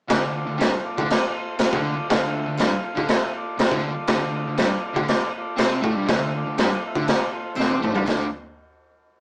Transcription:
0.08 picked electric bass D2, distorted electric guitar D3, transistor combo organ F4 A4 D5, kick, snare, crash
0.20 picked electric bass D2, distorted electric guitar D3
0.35 transistor combo organ F4 A4 D5
0.46 picked electric bass D2, distorted electric guitar D3
0.57 picked electric bass G2, distorted electric guitar G3, transistor combo organ F4 A4 C5, crash
0.61 snare, tambourine
0.71 muted distorted electric guitar stroke, muted picked electric bass stroke
0.82 transistor combo organ F4 A4 D5
0.97 picked electric bass D2, distorted electric guitar D3, kick
1.09 transistor combo organ F4 A4 D5, snare, crash
1.33 transistor combo organ F4 A4 C5
1.57 transistor combo organ F4 A4 F5, muted distorted electric guitar stroke, muted picked electric bass stroke, snare, tambourine, crash
1.73 picked electric bass D2, distorted electric guitar D3, kick
1.83 transistor combo organ F4 A4 D5
1.97 muted picked electric bass stroke, muted distorted electric guitar stroke
2.08 picked electric bass D2, distorted electric guitar D3, transistor combo organ F4 A4 F5, kick, snare, crash
2.21 picked electric bass D2, distorted electric guitar D3
2.32 transistor combo organ F4 A4 E5
2.46 picked electric bass D2, distorted electric guitar D3
2.57 picked electric bass G2, distorted electric guitar G3, transistor combo organ F4 A4 F5, snare, tambourine, crash
2.70 muted distorted electric guitar stroke, muted picked electric bass stroke
2.82 transistor combo organ F4 A4 F5
2.95 picked electric bass D2, distorted electric guitar D3, kick
3.08 transistor combo organ F4 A4 E5, snare, crash
3.34 transistor combo organ F4 A4 D5
3.58 transistor combo organ F4 A4, muted distorted electric guitar stroke, muted picked electric bass stroke, snare, tambourine, crash
3.62 transistor combo organ E5
3.71 picked electric bass D2, distorted electric guitar D3, kick
3.88 transistor combo organ F4 A4 D5
3.94 muted picked electric bass stroke, muted distorted electric guitar stroke
4.07 picked electric bass D2, distorted electric guitar D3, kick, snare, crash
4.13 transistor combo organ F4 A4 D5
4.21 picked electric bass D2, distorted electric guitar D3
4.35 transistor combo organ F4 A4 D5
4.45 picked electric bass D2, distorted electric guitar D3
4.57 picked electric bass G2, distorted electric guitar G3, snare, tambourine, crash
4.62 transistor combo organ F4 A4 D5
4.70 muted distorted electric guitar stroke, muted picked electric bass stroke
4.85 transistor combo organ F4 A4 D5
4.94 picked electric bass D2, distorted electric guitar D3, kick
5.08 transistor combo organ F4 A4 D5, snare, crash
5.38 transistor combo organ F4 A4 D5
5.57 picked electric bass C3, distorted electric guitar C4, transistor combo organ A4, snare, tambourine, crash
5.61 transistor combo organ F4 E5
5.81 picked electric bass A2, distorted electric guitar A3, transistor combo organ F4, kick
5.86 transistor combo organ A4 D5
5.95 picked electric bass G2, distorted electric guitar G3
6.06 picked electric bass D2, distorted electric guitar D3, transistor combo organ F4, kick, snare, crash
6.10 transistor combo organ A4 E5
6.20 picked electric bass D2, distorted electric guitar D3
6.35 transistor combo organ F4 A4 D5
6.46 picked electric bass D2, distorted electric guitar D3
6.58 picked electric bass G2, distorted electric guitar G3, snare, tambourine, crash
6.62 transistor combo organ F4 A4 D5
6.69 muted distorted electric guitar stroke, muted picked electric bass stroke
6.86 transistor combo organ F4 A4 E5
6.95 picked electric bass D2, distorted electric guitar D3, kick
7.08 transistor combo organ F4 A4 D5, snare, crash
7.33 transistor combo organ F4 A4 C5
7.55 picked electric bass C3, distorted electric guitar C4, transistor combo organ F4 A4 D5, snare, tambourine
7.71 high tom
7.80 picked electric bass A2, distorted electric guitar A3, transistor combo organ F4 A4 D5 A5, mid tom
7.93 picked electric bass G2, distorted electric guitar G3, floor tom
8.04 picked electric bass D2, distorted electric guitar D3 A3 D4, kick, tambourine
8.08 transistor combo organ F4 A4 D5, snare

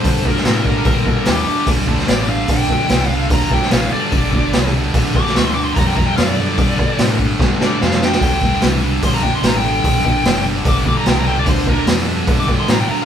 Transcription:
Already playing: lead electric guitar C5
0.04 distorted electric guitar G2 D3, fingered electric bass G2, kick, open hi-hat
0.25 distorted electric guitar G2 D3, lead electric guitar A#4, kick
0.36 snare
0.45 distorted electric guitar G2 E3, fingered electric bass A2, lead electric guitar A#4, snare, open hi-hat
0.65 distorted electric guitar G2 D3, lead electric guitar A#4, kick
0.85 distorted electric guitar G2 D3, fingered electric bass A#2, kick, open hi-hat
1.06 distorted electric guitar G2 D3, kick
1.25 fingered electric bass D#2, distorted electric guitar G2 E3, lead electric guitar G4, snare, open hi-hat
1.47 distorted electric guitar G2 D3, muted fingered electric bass stroke
1.67 fingered electric bass D2, distorted electric guitar G2 D3, kick, open hi-hat
1.87 distorted electric guitar G2 D3, kick
1.98 snare
2.08 fingered electric bass A1, distorted electric guitar G2 E3, lead electric guitar D5, snare, open hi-hat
2.28 distorted electric guitar G2 D3, lead electric guitar F5
2.48 fingered electric bass A#1, distorted electric guitar G2 D3, lead electric guitar G5, kick, open hi-hat
2.68 distorted electric guitar G2 D3, kick
2.89 fingered electric bass C2, distorted electric guitar G2 E3, snare, open hi-hat
3.10 distorted electric guitar G2 D3, lead electric guitar F5
3.30 fingered electric bass D2, distorted electric guitar G2 D3, lead electric guitar A#5, kick, open hi-hat
3.50 distorted electric guitar G2 D3, lead electric guitar G5, muted fingered electric bass stroke, kick
3.62 snare
3.71 fingered electric bass A#1, distorted electric guitar G2 E3, lead electric guitar F5, snare, open hi-hat
3.92 distorted electric guitar G2 D3, lead electric guitar D5, muted fingered electric bass stroke
4.12 fingered electric bass G1, distorted electric guitar G2 D3, kick, open hi-hat
4.33 distorted electric guitar G2 D3, kick
4.53 fingered electric bass C2, distorted electric guitar G2 E3, snare, open hi-hat
4.74 distorted electric guitar G2 D3
4.94 fingered electric bass A#1, distorted electric guitar G2 D3, kick, open hi-hat
5.14 distorted electric guitar G2 D3, lead electric guitar D6, kick
5.26 snare
5.36 fingered electric bass D2, distorted electric guitar G2 E3, lead electric guitar C#6, snare, open hi-hat
5.46 lead electric guitar C6
5.55 distorted electric guitar G2 D3, lead electric guitar D6
5.64 lead electric guitar C6
5.75 fingered electric bass F2, distorted electric guitar G2 D3, lead electric guitar A#5, kick, open hi-hat
5.87 lead electric guitar G5
5.95 distorted electric guitar G2 D3, lead electric guitar A#5, kick
6.06 lead electric guitar G5
6.16 fingered electric bass F#2, distorted electric guitar G2 E3, lead electric guitar F5, snare, open hi-hat
6.28 lead electric guitar D5
6.37 distorted electric guitar G2 D3, lead electric guitar D5
6.58 fingered electric bass G2, distorted electric guitar G2 D3, kick, open hi-hat
6.78 distorted electric guitar G2 D3, kick
6.98 distorted electric guitar G2 E3, fingered electric bass A2, snare, open hi-hat
7.19 distorted electric guitar G2 D3, kick
7.40 fingered electric bass G2, distorted electric guitar G2 D3, kick, snare
7.60 distorted electric guitar G2 D3, lead electric guitar D5, snare
7.81 fingered electric bass F2, distorted electric guitar G2 E3, lead electric guitar F5, snare
7.91 snare
8.01 distorted electric guitar G2 D3, lead electric guitar G5, snare
8.12 snare
8.21 fingered electric bass D2, distorted electric guitar G2 D3, lead electric guitar G5, kick, open hi-hat
8.42 distorted electric guitar G2 D3, kick
8.61 fingered electric bass C2, distorted electric guitar G2 E3, snare, open hi-hat
8.84 distorted electric guitar G2 D3
9.02 fingered electric bass A#1, distorted electric guitar G2 D3, lead electric guitar C6, kick, open hi-hat
9.14 lead electric guitar A#5
9.23 distorted electric guitar G2 D3, lead electric guitar G5, kick
9.35 lead electric guitar C6
9.43 fingered electric bass A1, distorted electric guitar G2 E3, lead electric guitar A#5, snare, open hi-hat
9.57 lead electric guitar G5
9.64 distorted electric guitar G2 D3, lead electric guitar G5
9.84 fingered electric bass A#1, distorted electric guitar G2 D3, kick, open hi-hat
10.05 distorted electric guitar G2 D3, kick
10.25 fingered electric bass F#1, distorted electric guitar G2 E3, snare, open hi-hat
10.47 distorted electric guitar G2 D3
10.65 fingered electric bass G1, distorted electric guitar G2 D3, lead electric guitar D6, kick, open hi-hat
10.86 distorted electric guitar G2 D3, lead electric guitar D6, kick
10.98 lead electric guitar A#5
11.06 fingered electric bass C2, distorted electric guitar G2 E3, lead electric guitar G5, snare, open hi-hat
11.18 lead electric guitar A#5
11.27 distorted electric guitar G2 D3, lead electric guitar G5
11.39 lead electric guitar D5
11.46 fingered electric bass D2, distorted electric guitar G2 D3, lead electric guitar C5, kick, open hi-hat
11.66 distorted electric guitar G2 D3, lead electric guitar A#4, kick
11.87 fingered electric bass F2, distorted electric guitar G2 E3, snare, open hi-hat
12.08 distorted electric guitar G2 D3
12.27 distorted electric guitar G2 D3, fingered electric bass G2, kick, open hi-hat
12.40 lead electric guitar D6
12.48 distorted electric guitar G2 D3, kick
12.60 lead electric guitar C6
12.68 distorted electric guitar G2 E3, fingered electric bass A2, lead electric guitar A#5, snare, open hi-hat
12.80 lead electric guitar G5
12.90 distorted electric guitar G2 D3, lead electric guitar A#5, muted fingered electric bass stroke

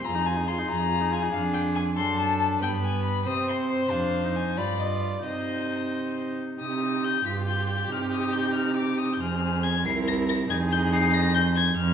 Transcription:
0.04 cello F2, viola F4, violin G#4 A#5
0.15 viola D#4
0.25 viola F4, violin G#5
0.36 viola D#4
0.48 viola F4, violin C6
0.58 viola D#4
0.68 cello F2, viola F4, violin A#5
0.79 viola D#4
0.90 viola F4
1.01 viola D#4
1.11 viola F4, violin G#5
1.22 viola D#4
1.33 cello F2, viola D4, violin F5
1.53 violin G5
1.75 violin G#5
1.96 cello F#2, viola D4, violin A4 C6
2.19 violin A5
2.39 violin A5
2.61 cello G2, viola B3, violin B4 G5
2.84 violin G#5
3.05 violin B5
3.26 cello C3, viola C4, violin C5 D#6
3.49 violin C6
3.70 violin C6
3.91 cello F2, viola D4, violin F5
4.24 viola D#4
4.36 violin G#5
4.56 cello G2, viola F4, violin D5 B5
4.80 violin D#5
5.02 violin D5
5.24 cello C3, viola D#4, violin C5 D#5
6.59 cello C3, viola D#4, violin G4 D#6
7.04 violin G6
7.25 cello G2, viola F4, violin B6
7.47 violin G6
7.69 violin G6
7.90 cello C3, viola D#4, violin F6
8.12 violin D#6
8.33 violin G6
8.53 violin F6
8.76 violin D6
8.98 violin D#6
9.13 violin G6
9.20 cello F2, viola C4, violin G#4 F6
9.63 violin G#6
9.85 cello C2, viola E4, violin A#4 C7
10.07 violin A#6
10.29 violin A#6
10.50 cello F2, viola D#4, violin G#4 G#6
10.72 violin G6
10.92 violin C7
11.13 violin A#6
11.35 violin G6
11.56 violin G#6
11.77 cello F2, violin F6

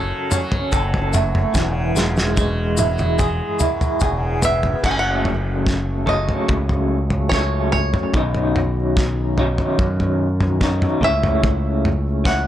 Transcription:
Already playing: picked electric bass F#1, clean electric guitar F#2 C#3 F#3 C#4 A4, tanpura F#2 C#3 F#3
0.31 clean electric guitar C#4, mid tom, shaker
0.37 tanpura F#3
0.52 floor tom
0.72 picked electric bass F#1, clean electric guitar A4, kick, shaker
0.94 floor tom
0.99 tanpura F#2
1.13 clean electric guitar A3, mid tom, shaker
1.35 mid tom
1.54 picked electric bass E1, clean electric guitar E3, kick, snare, shaker
1.61 tanpura C#3
1.95 picked electric bass E1, clean electric guitar G#3, snare, shaker
2.17 snare, shaker
2.23 tanpura F#3
2.37 clean electric guitar G#3, kick, high tom, shaker
2.77 clean electric guitar E4, high tom, shaker
2.86 tanpura F#3
2.98 mid tom, shaker
3.19 clean electric guitar G#4, kick, mid tom, shaker
3.48 tanpura F#2
3.59 clean electric guitar E4, mid tom, shaker
3.81 mid tom, shaker
4.00 picked electric bass E1, clean electric guitar G#4, kick, mid tom, shaker
4.10 tanpura C#3
4.42 clean electric guitar B3, five-string banjo E5, floor tom, shaker
4.63 floor tom
4.83 picked electric bass F#1, clean electric guitar F#2 C#3 F#3 A3 C#4 A4, five-string banjo F#5, kick, floor tom, crash
4.91 five-string banjo G#5
4.99 five-string banjo F#5
5.25 mid tom
5.67 kick, snare
6.06 clean electric guitar F#2 C#3 F#3 A3 C#4 A4, five-string banjo D#5, floor tom
6.29 floor tom
6.49 picked electric bass C#2, kick, floor tom
6.69 floor tom
7.10 floor tom
7.29 clean electric guitar F#2 C#3 F#3 A3 C#4, five-string banjo C#5, kick, snare
7.34 clean electric guitar A4
7.72 five-string banjo C#5, floor tom
7.94 floor tom, mid tom
8.14 picked electric bass B1, clean electric guitar B2 D#3 F#3 C#4 D#4, kick, floor tom
8.35 floor tom
8.56 mid tom
8.97 kick, snare
9.38 clean electric guitar B2 D#3 F#3 C#4 D#4, floor tom
9.58 floor tom
9.79 picked electric bass F#2, kick, floor tom
10.00 floor tom
10.40 floor tom, mid tom
10.61 clean electric guitar B2 D#3 F#3 C#4 D#4, kick, snare, floor tom
10.82 mid tom
11.01 picked electric bass C#2, clean electric guitar C#3 A3 C#4 E4, five-string banjo E5, floor tom
11.23 floor tom, mid tom
11.44 kick, floor tom
11.85 mid tom
12.24 clean electric guitar C#3 A3 C#4 E4, five-string banjo F#5, kick, snare

